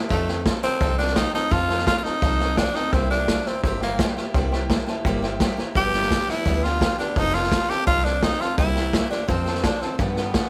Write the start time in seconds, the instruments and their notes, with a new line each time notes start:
Already playing: steel-string acoustic guitar A#3 E4 G4
0.10 upright bass F2, steel-string acoustic guitar F3 C4 D#4 A4, tenor saxophone A3, honky-tonk piano C5 F5 A5, kick, snare
0.27 steel-string acoustic guitar C4 D#4 A4, honky-tonk piano C5 F5 G5, snare
0.46 steel-string acoustic guitar F3 C4 D#4 A4, honky-tonk piano C5 F5 C6, kick, snare, hi-hat pedal
0.63 tenor saxophone C4, steel-string acoustic guitar C4 D#4 A4, honky-tonk piano C5 F5 A5, muted upright bass stroke, snare
0.81 upright bass C2, steel-string acoustic guitar F3 C4 D#4 A4, honky-tonk piano C5 F5 A5, kick, snare
0.98 steel-string acoustic guitar C4 D#4 A4, tenor saxophone D4, honky-tonk piano C5 F5 G5, snare
1.07 snare
1.16 steel-string acoustic guitar F3 C4 D#4 A4, tenor saxophone D#4, honky-tonk piano C5 F5 G5, kick, snare, hi-hat pedal
1.32 steel-string acoustic guitar C4 D#4 A4, tenor saxophone D#4, honky-tonk piano C5 F5 A5, muted upright bass stroke, snare
1.50 upright bass F2, steel-string acoustic guitar F3 C4 D#4 A4, tenor saxophone F4, honky-tonk piano C5 F5 A5, kick, snare
1.68 steel-string acoustic guitar C4 D#4 A4, honky-tonk piano C5 F5 A5, snare
1.78 snare
1.86 steel-string acoustic guitar F3 C4 D#4 A4, tenor saxophone F4, honky-tonk piano C5 F5 A5, kick, snare, hi-hat pedal
1.98 tenor saxophone F4
2.04 tenor saxophone D#4, steel-string acoustic guitar D#4 A4, honky-tonk piano C5 F5 A5, muted upright bass stroke, snare
2.08 steel-string acoustic guitar C4
2.22 upright bass C2, steel-string acoustic guitar F3 C4 D#4 A4, honky-tonk piano C5 F5 A5, kick, snare
2.40 steel-string acoustic guitar C4 D#4 A4, honky-tonk piano C5 F5 A5, snare
2.56 steel-string acoustic guitar F3 C4 D#4 A4, tenor saxophone D4, honky-tonk piano C5 F5 G5, kick, snare, hi-hat pedal
2.75 steel-string acoustic guitar C4 D#4 A4, tenor saxophone D#4, honky-tonk piano C5 F5 G5, muted upright bass stroke, snare
2.92 upright bass C2, steel-string acoustic guitar C3 G3 A#3 E4 G4, tenor saxophone C4, honky-tonk piano C5 E5 G5, kick, snare
3.10 steel-string acoustic guitar A#3 E4 G4, tenor saxophone D4, honky-tonk piano C5 E5 G5, snare
3.28 steel-string acoustic guitar G3 A#3 E4 G4, honky-tonk piano C5 E5 A5, kick, snare, hi-hat pedal
3.46 tenor saxophone C4, steel-string acoustic guitar E4 G4, honky-tonk piano C5 E5 A#5, muted upright bass stroke, snare
3.50 steel-string acoustic guitar A#3
3.63 upright bass G1, steel-string acoustic guitar C3 G3 A#3 E4 G4, tenor saxophone C4, honky-tonk piano C5 E5 A#5, kick, snare
3.80 tenor saxophone A#3, steel-string acoustic guitar E4 G4, honky-tonk piano C5 E5 G5, snare
3.85 steel-string acoustic guitar A#3
3.99 steel-string acoustic guitar G3 A#3 E4 G4, honky-tonk piano C5 E5 G5, kick, snare, hi-hat pedal
4.16 steel-string acoustic guitar A#3 E4 G4, honky-tonk piano C5 E5 G5, muted upright bass stroke, snare
4.34 upright bass C2, steel-string acoustic guitar C3 G3 A#3 E4 G4, honky-tonk piano C5 E5 G5, kick, snare
4.52 steel-string acoustic guitar A#3 E4 G4, honky-tonk piano C5 E5 G5, snare
4.70 steel-string acoustic guitar G3 A#3 E4 G4, honky-tonk piano C5 E5 G5, kick, snare, hi-hat pedal
4.87 steel-string acoustic guitar A#3 E4 G4, honky-tonk piano C5 E5 A5, muted upright bass stroke, snare
5.05 upright bass G1, steel-string acoustic guitar C3 G3 A#3 E4 G4, honky-tonk piano C5 E5 G5, kick, snare
5.22 steel-string acoustic guitar E4 G4, honky-tonk piano C5 E5 G5, snare
5.26 steel-string acoustic guitar A#3
5.40 steel-string acoustic guitar G3 A#3 E4, honky-tonk piano C5 E5 G5, kick, snare, hi-hat pedal
5.44 steel-string acoustic guitar G4
5.57 steel-string acoustic guitar A#3 E4 G4, honky-tonk piano C5 E5 A#5, muted upright bass stroke, snare
5.75 upright bass G1, steel-string acoustic guitar G2 D3 F3 B3 D4 G4, tenor saxophone G4, honky-tonk piano B4 D5 G5, kick, snare
5.92 steel-string acoustic guitar B3 D4 G4, honky-tonk piano B4 D5 E5, snare
5.96 steel-string acoustic guitar F3
6.02 snare
6.10 steel-string acoustic guitar F3 B3 D4 G4, honky-tonk piano B4 D5 G5, kick, snare, hi-hat pedal
6.28 steel-string acoustic guitar F3 B3 D4 G4, tenor saxophone E4, honky-tonk piano B4 D5 G5, muted upright bass stroke, snare
6.46 upright bass D2, steel-string acoustic guitar G2 D3 F3 B3 D4 G4, honky-tonk piano B4 D5 G5, kick, snare
6.63 steel-string acoustic guitar B3 D4 G4, tenor saxophone F4, honky-tonk piano B4 D5 G5, snare
6.68 steel-string acoustic guitar F3
6.80 steel-string acoustic guitar F3 B3 D4 G4, honky-tonk piano B4 D5 G5, kick, snare, hi-hat pedal
6.99 steel-string acoustic guitar F3 B3 D4 G4, tenor saxophone D4, honky-tonk piano B4 D5 G5, muted upright bass stroke, snare
7.16 upright bass F1, steel-string acoustic guitar F3 C4 D#4 A4, tenor saxophone D#4, honky-tonk piano C5 F5 A5, kick, snare
7.34 steel-string acoustic guitar D#4 A4, tenor saxophone F4, honky-tonk piano C5 F5 A5, snare
7.38 steel-string acoustic guitar C4
7.43 snare
7.51 steel-string acoustic guitar F3 C4 D#4 A4, honky-tonk piano C5 F5 A5, kick, snare, hi-hat pedal
7.68 steel-string acoustic guitar C4 D#4 A4, tenor saxophone G4, honky-tonk piano C5 F5 A5, muted upright bass stroke, snare
7.86 upright bass C2, steel-string acoustic guitar F3 C4 D#4, tenor saxophone F4, honky-tonk piano C5 F5 A5, kick, snare
7.90 steel-string acoustic guitar A4
8.04 tenor saxophone D4, steel-string acoustic guitar D#4 A4, honky-tonk piano C5 F5 A5, snare
8.08 steel-string acoustic guitar C4
8.23 steel-string acoustic guitar F3 C4 D#4, tenor saxophone D#4, honky-tonk piano C5 F5 G5, kick, snare, hi-hat pedal
8.27 steel-string acoustic guitar A4
8.40 steel-string acoustic guitar D#4 A4, tenor saxophone F4, honky-tonk piano C5 F5 C6, muted upright bass stroke, snare
8.44 steel-string acoustic guitar C4
8.58 upright bass C2, steel-string acoustic guitar C3 G3 A#3 E4 G4, tenor saxophone E4, honky-tonk piano C5 E5 G5, kick, snare
8.75 steel-string acoustic guitar A#3 E4 G4, honky-tonk piano C5 E5 A#5, snare
8.93 steel-string acoustic guitar G3 A#3 E4 G4, honky-tonk piano C5 E5 G5, kick, snare, hi-hat pedal
9.10 steel-string acoustic guitar A#3 E4 G4, tenor saxophone D4, honky-tonk piano C5 E5 G5, muted upright bass stroke, snare
9.28 upright bass F2, steel-string acoustic guitar F3 C4 D#4 A4, tenor saxophone C4, honky-tonk piano C5 F5 A5, kick, snare
9.46 steel-string acoustic guitar C4 D#4 A4, honky-tonk piano C5 F5 A5, snare
9.55 snare
9.63 steel-string acoustic guitar F3 C4 D#4 A4, tenor saxophone D4, honky-tonk piano C5 F5 A5, kick, snare, hi-hat pedal
9.81 tenor saxophone C4, steel-string acoustic guitar C4 D#4 A4, honky-tonk piano C5 F5 A5, muted upright bass stroke, snare
9.98 upright bass G2, steel-string acoustic guitar G2 D3 F3 B3 D4 G4, tenor saxophone B3, honky-tonk piano B4 D5 G5, kick, snare
10.16 steel-string acoustic guitar B3 D4 G4, honky-tonk piano B4 D5 G5, snare
10.21 steel-string acoustic guitar F3
10.34 steel-string acoustic guitar F3 B3 D4, honky-tonk piano B4 D5 E5, kick, snare, hi-hat pedal
10.39 steel-string acoustic guitar G4